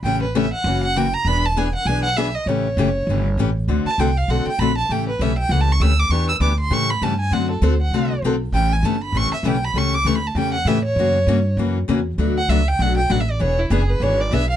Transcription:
X:1
M:4/4
L:1/8
Q:"Swing" 1/4=198
K:Amix
V:1 name="Violin"
g B e f2 f g ^a | b a ^g f g f e ^d | c6 z2 | z a g =f ^f g b a |
g B e g (3f a c' e' d' | c' e' d' =c' ^c' b a ^g | f A =c f2 z3 | g ^g a b c' e =g b |
c' d' (3c' b a g f e c- | c4 z4 | z f e g f g (3f e d | c E ^G B c d e =f |]
V:2 name="Steel-string acoustic guitar"
[C,E,A,CG] z [C,E,A,CG] z [C,E,^A,CF] z [C,E,A,CF] z | [E,B,D^G] z [E,B,DG] z [E,B,DG] z [E,B,DG] z | [C,E,A,CG] z [C,E,A,CG] z [C,E,A,CG] z [C,E,A,CG] z | [D,A,=CFA] z [D,A,CFA] z [D,A,CFA] z [D,A,CFA] z |
[C,E,A,CG] z [C,E,A,CG] z [C,E,A,CG] z [C,E,A,CG] z | [E,B,DG] z [E,B,DG] z [C,E,A,CG] z [C,E,A,CG] z | [D,A,=CFA] z [D,A,CFA] z [D,A,CFA] z [D,A,CFA] z | [C,E,A,CG] z [C,E,A,CG] z [C,E,A,CG] z [C,E,A,CG] z |
[C,E,A,CG] z [C,E,A,CG] z [C,E,A,CG] z [C,E,A,CG] z | [C,E,^A,CF] z [C,E,A,CF] z [C,E,A,CF] z [C,E,A,CF] z | [B,,F,A,DF] z [B,,F,A,DF] z [B,,F,A,DF] z [B,,F,A,DF] z | [E,B,D^G] z [E,B,DG] z [E,B,DG] z [E,B,DG] z |]
V:3 name="Upright bass" clef=bass
A,,,4 F,,,4 | E,,,4 B,,,4 | A,,,2 F,,,2 G,,,2 A,,,2 | D,, z =C,,2 B,,, z _B,,,2 |
A,,,2 B,,,2 C,,2 D,,2 | E,,2 D,,2 A,,2 G,,2 | F,,2 D,,2 =C,,2 B,,,2 | A,,,2 G,,,2 A,,, z B,,,2 |
C,,2 D,,2 E,,2 A,,2 | F,,2 G,,2 F,,2 E,,2 | D,,2 C,,2 B,,,2 A,,,2 | E,,,2 F,,,2 ^G,,,2 B,,,2 |]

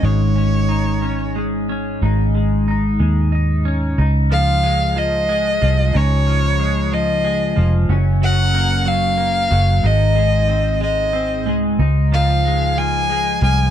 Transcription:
X:1
M:6/8
L:1/8
Q:3/8=61
K:Db
V:1 name="Violin"
d4 z2 | z6 | z f2 e3 | d3 e2 z |
z g2 f3 | e3 e2 z | z f2 a2 a |]
V:2 name="Clean electric guitar" clef=bass
[A,,A,DE] D E D A, D | [A,,E] A, E A, E D | E F, A, F, A, F, | [D,E] F, A, F, A, F, |
[G,,D] G, B, G, B, G, | [A,,E] A, C A, C A, | E F, A, F, A, F, |]
V:3 name="Fingered electric bass" clef=bass
A,,,6 | A,,,3 E,,3 | D,,4- D,, C,, | D,,4- D,, F,,, |
G,,,4- G,,, G,,, | A,,,4- A,,, C,, | D,,4- D,, C,, |]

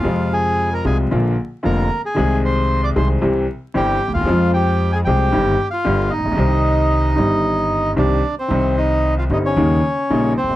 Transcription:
X:1
M:4/4
L:1/16
Q:1/4=114
K:Cm
V:1 name="Bandoneon"
[Ff]2 [Aa]3 [Bb] [Aa]2 z4 [Bb]3 [Aa]- | [Aa]2 [cc']3 [dd'] [cc']2 z4 [Gg]3 [Ff]- | [Ff]2 [Gg]3 [Aa] [Gg]4- [Gg] [Ff]3 [Ee]2- | [Ee]12 [Dd]3 [Cc]- |
[Cc]2 [Ee]3 [Ff] [Ee] [_D_d]6- [Dd] [Cc]2 |]
V:2 name="Upright piano" clef=bass
[F,,C,F,A,F]6 [C,,C,F,A,F]2 [B,,,B,,D,F,B,F]2 z2 [F,,,F,,D,F,B,F]2 z2 | [C,,C,E,A,CA]6 [C,,C,E,A,CA]2 [C,,C,=E,G,CG]2 z2 [G,,,G,,E,G,CG]2 z/2 D,,/2 _E,,/2 =E,,/2 | [F,,F,A,CF]6 [C,,C,F,A,CA]2 [G,,,G,,E,G,CG]2 z2 [G,,,G,,D,G,=B,G]2 z/2 =A,,,/2 _B,,,/2 =B,,,/2 | [C,,C,E,G,CG]6 [G,,,G,,E,G,CG]6 [C,,C,E,G,CG]2 z2 |
[C,,C,E,G,CE]6 [G,,,G,,D,G,CE]2 [E,,_D,E,G,B,E]2 z2 [B,,,B,,D,G,B,E]2 z/2 F,,,/2 ^F,,,/2 z/2 |]
V:3 name="Upright bass" clef=bass
F,,4- F,,3/2 z/2 C,,3/2 z/2 B,,,3/2 z2 z/2 F,,,3/2 z2 z/2 | C,,4- C,,3/2 z/2 C,,3/2 z/2 C,,3/2 z2 z/2 G,,,3/2 z D,,/2 E,,/2 =E,,/2 | F,,4- F,,3/2 z/2 C,,3/2 z/2 G,,,3/2 z2 z/2 G,,,3/2 z =A,,,/2 B,,,/2 =B,,,/2 | C,,4- C,,3/2 z/2 G,,,4- G,,,3/2 z/2 C,,3/2 z2 z/2 |
C,,4- C,,3/2 z/2 G,,,3/2 z/2 E,,3/2 z2 z/2 B,,,3/2 z F,,,/2 ^F,,,/2 z/2 |]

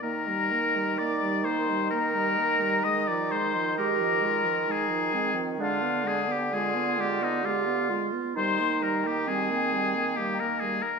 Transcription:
X:1
M:3/4
L:1/16
Q:1/4=65
K:Eb
V:1 name="Flute"
b4 d'2 c'2 b4 | e' d' c'2 b4 a4 | f2 a g a2 g e f3 z | c'2 b g a4 g b a b |]
V:2 name="Oboe"
B4 d2 c2 B4 | e d c2 B4 A4 | F2 A G A2 G E F3 z | c2 B G A4 G B A B |]
V:3 name="Clarinet"
E12- | E4 G2 F2 E2 C2 | D2 z2 F4 G2 F2 | E4 C4 B,4 |]
V:4 name="French horn" clef=bass
B, G, B, G, B, G, B, G, B, G, B, G, | A, F, A, F, A, F, A, F, A, F, A, F, | A, =B, A, B, A, B, A, B, A, B, A, B, | G, B, G, B, G, B, G, B, G, B, G, B, |]
V:5 name="Bassoon" clef=bass
E,12- | E,12 | D,8- D,2 z2 | E,12 |]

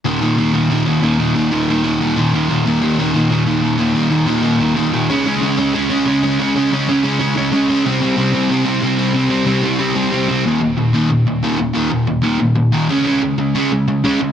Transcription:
X:1
M:4/4
L:1/8
Q:1/4=185
K:Ebmix
V:1 name="Overdriven electric guitar" clef=bass
[E,,B,,E,] [E,,B,,E,] [E,,B,,E,] [E,,B,,E,] [E,,B,,E,] [E,,B,,E,] [E,,B,,E,] [E,,B,,E,] | [E,,B,,E,] [E,,B,,E,] [E,,B,,E,] [E,,B,,E,] [E,,B,,E,] [E,,B,,E,] [E,,B,,E,] [E,,B,,E,] | [E,,B,,E,] [E,,B,,E,] [E,,B,,E,] [E,,B,,E,] [E,,B,,E,] [E,,B,,E,] [E,,B,,E,] [E,,B,,E,] | [E,,B,,E,] [E,,B,,E,] [E,,B,,E,] [E,,B,,E,] [E,,B,,E,] [E,,B,,E,] [E,,B,,E,] [D,A,D] |
[D,A,D] [D,A,D] [D,A,D] [D,A,D] [D,A,D] [D,A,D] [D,A,D] [D,A,D] | [D,A,D] [D,A,D] [D,A,D] [D,A,D] [D,A,D] [D,A,D] [D,A,D] [D,A,D] | [C,G,C] [C,G,C] [C,G,C] [C,G,C] [C,G,C] [C,G,C] [C,G,C] [C,G,C] | [C,G,C] [C,G,C] [C,G,C] [C,G,C] [C,G,C] [C,G,C] [C,G,C] [C,G,C] |
[E,,B,,E,] [E,,B,,] [E,,B,,] [E,,B,,E,] [E,,B,,] [E,,B,,] [E,,B,,E,] [E,,B,,] | [E,,B,,E,] [E,,B,,] [E,,B,,] [E,,B,,E,] [E,,B,,] [E,,B,,] [E,,B,,E,] [D,A,D] | [D,A,D] [D,A,] [D,A,] [D,A,D] [D,A,] [D,A,] [D,A,D] [D,A,] |]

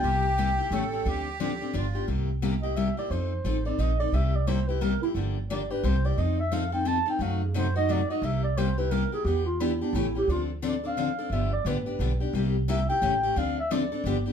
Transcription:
X:1
M:3/4
L:1/16
Q:"Swing" 1/4=176
K:Cmix
V:1 name="Clarinet"
g12- | g8 z4 | z6 _e2 =e2 d2 | c6 d2 _e2 d2 |
e2 d2 c2 =B2 _B2 E2 | z4 d2 =B2 c2 d2 | _e2 =e2 f2 g2 a2 g2 | f2 _A2 c2 ^d2 =d2 ^d2 |
e2 d2 c2 =B2 _B2 _A2 | G2 F2 E2 D2 E2 G2 | F2 z2 d2 f6 | e2 d2 =B6 z2 |
z4 e2 g6 | f2 e2 d6 z2 |]
V:2 name="Accordion"
G8 A4 | G8 F4 | z12 | z12 |
z12 | z12 | z12 | z12 |
z12 | z12 | z12 | z12 |
z12 | z12 |]
V:3 name="Steel-string acoustic guitar"
[C,G,B,EG]2 z2 [C,G,B,EG] z [B,EG]2 [^C,E,A,^CG] z [A,CG]2 | [D,F,CDA]2 z2 [D,F,CDA] z [CDA]2 [D,F,=B,DG] z [B,DG]2 | [C,G,B,EG]2 z2 [C,G,B,EG] z [B,EG]2 [C,G,B,EG] z [B,EG]2 | [F,C_EA]2 z2 [F,CEA] z [CEA]2 [F,CEA] z [CEA]2 |
[C,G,B,EG]2 z2 [C,G,B,EG] z [B,EG]2 [C,G,B,EG] z [B,EG]2 | [D,F,B,DG]2 z2 [D,F,B,DG] z [B,DG]2 [C,G,B,EG] z [B,EG]2 | [F,C_EA]2 z2 [F,CEA] z [CEA]2 [F,CEA] z [CEA]2 | [C,^F,A,^D^F]2 z2 [C,F,A,DF] z [A,DF]2 [C,F,A,DF] z [A,DF]2 |
[C,G,B,EG]2 z2 [C,G,B,EG] z [B,EG]2 [C,G,B,EG] z [B,EG]2 | [E,=B,DG]2 z2 [E,B,DG] z [B,DG]2 [^C,E,A,^CG] z [A,CG]2 | [D,F,CDA]2 z2 [D,F,CDA] z [CDA]2 [D,F,CDA] z [CDA]2 | [D,F,=B,DG]2 z2 [D,F,B,DG] z [B,DG]2 [D,F,B,DG] z [B,DG]2 |
[C,G,B,EG]2 z2 [C,G,B,EG] z [B,EG]2 [^C,E,A,^CG] z [A,CG]2 | [D,F,CDA]2 z2 [D,F,CDA] z [CDA]2 [D,F,=B,DG] z [B,DG]2 |]
V:4 name="Upright bass" clef=bass
C,,8 A,,,4 | D,,8 G,,,4 | C,,12 | F,,4 A,,,4 B,,,4 |
C,,12 | G,,,8 C,,4 | F,,12 | ^F,,12 |
C,,12 | E,,8 A,,,4 | D,,12 | G,,,4 A,,,4 =B,,,4 |
C,,8 A,,,4 | D,,8 G,,,4 |]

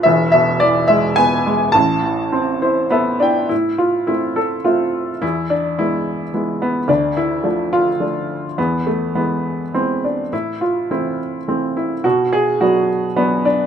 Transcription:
X:1
M:3/4
L:1/8
Q:1/4=106
K:Am
V:1 name="Upright piano"
e e d e ^g2 | a4 B, D | E F E A F2 | E D E2 z B, |
D E z F z2 | B, A, B,2 C D | E F E z2 E | ^F ^G F z B, D |]
V:2 name="Upright piano"
[E,,,E,,] B,, E, ^G, B, G, | [A,,,A,,] E, C [Ec] [Ae] [Eg] | A,,2 [A,C]2 [A,Ce]2 | E,,2 [^G,B,]2 [G,B,E]2 |
D,,2 [F,A,D]2 [F,A,D]2 | E,,2 [E,^G,]2 [E,G,B,]2 | A,,2 [E,A,C]2 [E,A,C]2 | B,,2 [^F,B,D]2 [F,D]2 |]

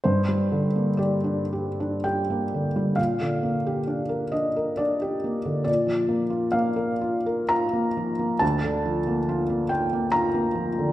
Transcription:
X:1
M:3/4
L:1/16
Q:1/4=66
K:Gm
V:1 name="Felt piano"
c4 d4 g4 | f6 e2 d4 | d4 f4 b4 | a6 g2 b4 |]
V:2 name="Felt piano"
G,, G, D, B, G D G D G B, D, G, | B,, D, B, G D B D B D G B, D, | B,, F, B, F B, B F B F B, F, B, | D,, D, F, B, F B, F B, F B, F, D, |]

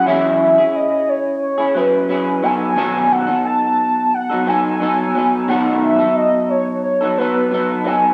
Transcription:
X:1
M:4/4
L:1/16
Q:1/4=88
K:Bmix
V:1 name="Soft synth lead"
e2 e2 d2 c2 c2 B4 g2- | g2 f2 a4 f2 g6 | f2 e2 d2 c2 c2 B4 g2 |]
V:2 name="Clean electric guitar"
[E,F,CEG]3 [CEG]6 [CEG] [F,CEG]2 [F,CEG]2 [F,B,DA]2 | [B,,D,F,B,DA]3 [F,B,DA]6 [F,B,DA] [F,B,DA]2 [F,B,DA]2 [F,B,DA]2 | [B,,D,F,B,DA]3 [F,B,DA]6 [F,B,DA] [F,B,DA]2 [F,B,DA]2 [F,B,DA]2 |]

